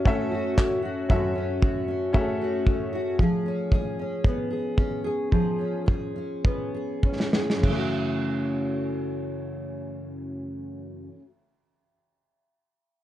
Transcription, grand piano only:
0.00 0.05 C#4 medium
0.00 0.06 F#4 medium
0.00 0.06 A4 medium
0.00 0.07 E5 medium
0.05 0.70 C#4 medium
0.05 0.70 F#4 medium
0.05 0.71 A4 medium
0.05 0.71 E5 loud
1.09 1.74 C#4 medium
1.09 1.75 F#4 medium
1.09 1.75 A4 medium
1.09 1.75 E5 medium
2.13 2.78 C#4 medium
2.13 2.79 F#4 medium
2.13 2.21 G#4 medium
2.13 2.79 E5 medium
2.20 2.82 A4 medium

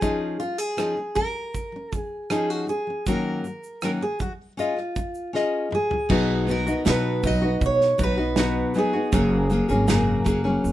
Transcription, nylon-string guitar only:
0.01 0.38 F3 medium
0.01 0.40 C#4 medium
0.01 0.41 D#4 medium
0.01 0.41 G#4 medium
0.40 0.70 F3 soft
0.40 0.72 C#4 medium
0.77 0.96 F3 medium
0.77 0.97 C#4 medium
0.77 0.98 D#4 medium
0.77 0.98 G#4 medium
0.99 1.18 C#4 soft
1.16 1.47 F3 medium
1.16 1.48 C#4 medium
1.72 1.91 F3 soft
1.72 1.94 C#4 soft
1.92 2.23 F3 medium
1.92 2.24 C#4 medium
2.30 2.66 F3 medium
2.30 2.69 C#4 medium
2.30 2.69 D#4 medium
2.30 2.69 G#4 medium
2.67 2.86 F3 medium
2.67 2.88 C#4 medium
2.87 3.06 F3 soft
2.87 3.07 C#4 soft
3.06 3.43 D#3 medium
3.06 3.45 F#3 medium
3.06 3.45 A#3 medium
3.06 3.45 C#4 medium
3.06 3.46 F#4 medium
3.44 3.75 D#3 soft
3.44 3.76 F#3 soft
3.82 4.00 D#3 medium
3.82 4.02 F#3 medium
3.82 4.02 A#3 medium
3.82 4.02 C#4 medium
3.82 4.02 F#4 medium
4.01 4.18 D#3 soft
4.01 4.21 F#3 soft
4.19 4.50 D#3 soft
4.19 4.52 F#3 medium
4.57 4.75 C#4 medium
4.57 4.77 F4 medium
4.57 4.78 G#4 medium
4.57 4.78 D#5 medium
4.96 5.27 C#4 medium
4.96 5.28 F4 medium
5.33 5.69 C#4 medium
5.33 5.72 F4 medium
5.33 5.73 G#4 medium
5.33 5.73 D#5 medium
5.71 5.89 C#4 medium
5.71 5.92 F4 medium
5.90 6.09 C#4 soft
5.90 6.10 F4 medium
6.09 6.47 B2 medium
6.09 6.46 F#3 medium
6.09 6.47 B3 medium
6.09 6.48 D#4 medium
6.09 6.48 F#4 medium
6.47 6.66 F#3 medium
6.47 6.67 B3 medium
6.47 6.67 D#4 medium
6.47 6.65 F#4 medium
6.67 6.85 B3 soft
6.67 6.85 D#4 medium
6.67 6.86 F#4 medium
6.85 7.23 B2 medium
6.85 7.22 F#3 medium
6.85 7.23 B3 medium
6.85 7.24 D#4 medium
6.85 7.24 F#4 medium
7.23 7.42 F#3 medium
7.23 7.43 B3 medium
7.23 7.43 D#4 medium
7.23 7.40 F#4 medium
7.42 7.97 B3 soft
7.42 7.99 D#4 soft
7.42 7.99 F#4 medium
7.98 8.18 F#3 medium
7.98 8.18 B3 medium
7.98 8.18 D#4 medium
7.98 8.16 F#4 medium
8.17 8.36 B3 soft
8.17 8.37 D#4 soft
8.17 8.37 F#4 medium
8.36 8.75 B2 medium
8.36 8.73 F#3 medium
8.36 8.74 B3 medium
8.36 8.76 D#4 medium
8.36 8.76 F#4 medium
8.74 8.94 F#3 medium
8.74 8.94 B3 medium
8.74 8.94 D#4 medium
8.74 8.92 F#4 medium
8.93 9.13 B3 soft
8.93 9.13 D#4 soft
8.93 9.12 F#4 soft
9.12 9.50 F#2 medium
9.12 9.50 C#3 medium
9.12 9.48 F#3 medium
9.12 9.50 A#3 medium
9.12 9.51 C#4 medium
9.12 9.51 G#4 medium
9.50 9.69 F#3 medium
9.50 9.70 A#3 medium
9.50 9.69 C#4 medium
9.50 9.68 G#4 medium
9.69 9.87 F#3 medium
9.69 9.88 A#3 medium
9.69 9.88 C#4 medium
9.69 9.88 G#4 medium
9.88 10.26 F#2 medium
9.88 10.26 C#3 medium
9.88 10.23 F#3 medium
9.88 10.24 A#3 loud
9.88 10.25 C#4 medium
9.88 10.27 G#4 medium
10.24 10.44 F#3 medium
10.24 10.45 A#3 medium
10.24 10.44 C#4 medium
10.24 10.43 G#4 medium
10.44 10.72 F#3 soft
10.44 10.72 A#3 soft
10.44 10.72 C#4 medium
10.44 10.72 G#4 medium

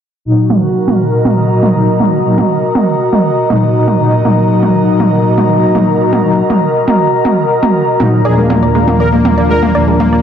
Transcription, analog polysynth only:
0.25 1.72 A#2 medium
0.25 1.72 F#3 medium
0.25 1.72 D#4 medium
1.75 2.22 A#2 medium
1.75 2.22 F#3 medium
1.75 2.22 D#4 medium
2.25 2.42 A#2 medium
2.25 2.42 F#3 medium
2.25 2.42 D#4 medium
3.50 3.97 A#2 medium
3.50 3.97 F#3 medium
3.50 3.97 D#4 loud
4.00 4.22 A#2 medium
4.00 4.22 F#3 medium
4.00 4.22 D#4 loud
4.25 5.72 A#2 medium
4.25 5.72 F#3 medium
4.25 5.72 D#4 medium
5.75 6.22 A#2 medium
5.75 6.22 F#3 medium
5.75 6.22 D#4 medium
6.25 6.42 A#2 medium
6.25 6.42 F#3 medium
6.25 6.42 D#4 medium
8.00 8.22 A#2 medium
8.00 8.22 F#3 medium
8.00 8.22 D#4 loud
8.25 9.72 D#2 medium
8.25 9.72 A#2 medium
8.25 9.72 F3 medium
8.25 9.72 D4 medium
9.75 10.22 D#2 medium
9.75 10.22 A#2 medium
9.75 10.22 F3 medium
9.75 10.22 D4 medium

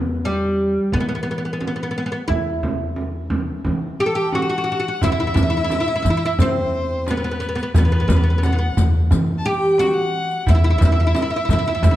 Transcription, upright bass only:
0.00 0.77 E2 medium
0.93 2.13 E3 medium
2.30 3.50 E2 medium
3.67 4.87 E3 medium
5.03 5.33 E2 medium
5.37 5.67 E2 medium
6.05 6.35 E3 medium
6.39 7.59 E2 medium
7.75 8.05 E2 medium
8.09 8.69 E2 medium
8.77 9.07 E2 medium
9.12 10.32 E3 medium
10.48 10.78 E2 medium
10.82 11.12 E2 medium
11.49 11.79 E3 medium
11.83 11.96 E2 medium

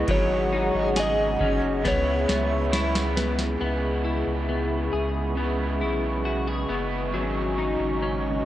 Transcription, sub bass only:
0.08 0.71 G#1 loud
0.74 1.37 G#1 medium
1.40 1.86 F#1 medium
1.85 2.26 C#2 loud
2.29 3.57 C#2 medium
3.61 4.24 C#2 loud
4.27 4.90 C#2 medium
4.93 5.83 C#2 medium
5.81 6.65 B1 medium
6.69 7.15 F#1 medium
7.13 7.76 G#1 loud
7.80 8.43 G#1 medium

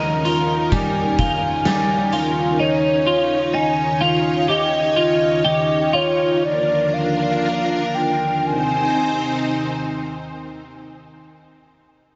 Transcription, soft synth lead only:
0.00 0.75 A#5 loud
0.73 2.60 G#5 loud
2.60 3.55 C#5 loud
3.54 4.03 G#5 loud
4.01 4.51 F5 loud
4.50 5.96 D#5 loud
5.95 6.43 C#5 medium
6.44 6.95 D5 loud
6.93 7.96 F5 loud
7.95 8.48 G5 loud
8.46 10.04 G#5 loud

